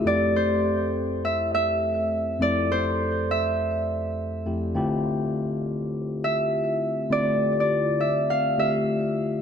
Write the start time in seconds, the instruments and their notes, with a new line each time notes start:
Already playing: tine electric piano A4, harp E5
0.04 tine electric piano F2 A3 C4 E4 G4, harp D5
0.36 harp C5
1.25 harp E5
1.55 harp E5
2.40 tine electric piano F2 A3 C4 E4 A4, harp D5
2.72 harp C5
3.31 harp E5
4.46 tine electric piano F2 A3 C4 E4 G4
4.75 tine electric piano D3 A3 C4 E4 F4 G4
6.24 harp E5
7.10 tine electric piano D3 A3 C4 E4 F4 G4, harp D5
7.60 harp D5
8.00 harp E5
8.30 harp F5
8.57 tine electric piano D3 A3 C4 E4 F4 G4, harp E5